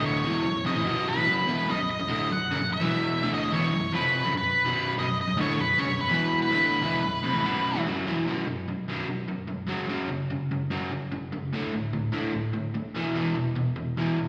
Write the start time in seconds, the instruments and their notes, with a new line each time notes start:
Already playing: overdriven electric guitar D2 A2 D3
0.06 lead electric guitar C#5
0.24 overdriven electric guitar E2 B2 E3
0.45 overdriven electric guitar B1 F#2
0.65 overdriven electric guitar F2 C3, lead electric guitar D#5
0.76 overdriven electric guitar A2 E3
0.85 overdriven electric guitar B1 F#2 B2
1.08 lead electric guitar B4
1.16 overdriven electric guitar A2 E3
1.26 overdriven electric guitar F#2 C#3 F#3
1.47 overdriven electric guitar E2 B2 E3
1.68 overdriven electric guitar B1 F#2, lead electric guitar D#5
1.79 overdriven electric guitar B1 F#2
1.91 lead electric guitar D#5
1.99 overdriven electric guitar B1 F#2
2.08 overdriven electric guitar D2 A2 D3
2.30 overdriven electric guitar B1 F#2, lead electric guitar F#5
2.50 overdriven electric guitar F#2 C#3
2.60 overdriven electric guitar B1 F#2
2.70 overdriven electric guitar B1 F#2, lead electric guitar E5
2.80 overdriven electric guitar E2 B2 E3
3.22 overdriven electric guitar D2 A2 D3
3.34 lead electric guitar D#5
3.51 overdriven electric guitar E2 B2 E3, lead electric guitar C#5
3.72 overdriven electric guitar B1 F#2
3.92 overdriven electric guitar F2 C3 F3, lead electric guitar B4
4.24 overdriven electric guitar F#2 C#3
4.34 overdriven electric guitar B1 F#2, lead electric guitar B4
4.65 overdriven electric guitar B1 F#2 B2
4.97 overdriven electric guitar B1 F#2, lead electric guitar D#5
5.07 overdriven electric guitar B1 F#2
5.21 lead electric guitar D#5
5.28 overdriven electric guitar B1 F#2
5.37 overdriven electric guitar D2 A2 D3, lead electric guitar C#5
5.58 overdriven electric guitar B1 F#2, lead electric guitar B4
5.78 overdriven electric guitar F#2 C#3, lead electric guitar C#5
5.88 overdriven electric guitar B1 F#2
5.99 overdriven electric guitar B1 F#2, lead electric guitar B4
6.08 overdriven electric guitar E2 B2 E3
6.42 lead electric guitar B4
6.50 overdriven electric guitar D2 A2 D3
6.82 overdriven electric guitar E2 B2 E3
7.02 overdriven electric guitar B1 F#2
7.23 overdriven electric guitar F2 C3
7.33 overdriven electric guitar A2 E3
7.44 overdriven electric guitar B1 F#2 B2
7.75 overdriven electric guitar A2 E3
7.86 overdriven electric guitar F#2 C#3 F#3
8.06 overdriven electric guitar E2 B2 E3
8.26 overdriven electric guitar B1 F#2 B2
8.47 overdriven electric guitar B1 F#2
8.68 overdriven electric guitar B1 F#2
8.89 overdriven electric guitar B1 F#2 B2
9.09 overdriven electric guitar B1 F#2
9.28 overdriven electric guitar B1 F#2
9.48 overdriven electric guitar B1 F#2
9.67 overdriven electric guitar F#2 C#3 F#3
9.88 overdriven electric guitar F#2 C#3 F#3
10.09 overdriven electric guitar F#2 C#3
10.30 overdriven electric guitar F#2 C#3
10.51 overdriven electric guitar F#2 C#3
10.70 overdriven electric guitar F#2 C#3 F#3
10.91 overdriven electric guitar F#2 C#3
11.12 overdriven electric guitar F#2 C#3
11.32 overdriven electric guitar F#2 C#3
11.53 overdriven electric guitar D2 A2 D3
11.73 overdriven electric guitar D2 A2
11.93 overdriven electric guitar D2 A2
12.12 overdriven electric guitar D2 A2 D3
12.33 overdriven electric guitar D2 A2
12.53 overdriven electric guitar D2 A2
12.74 overdriven electric guitar D2 A2
12.95 overdriven electric guitar E2 B2 E3
13.15 overdriven electric guitar E2 B2 E3
13.35 overdriven electric guitar E2 B2
13.56 overdriven electric guitar E2 B2
13.76 overdriven electric guitar E2 B2
13.97 overdriven electric guitar E2 B2 E3
14.19 overdriven electric guitar E2 B2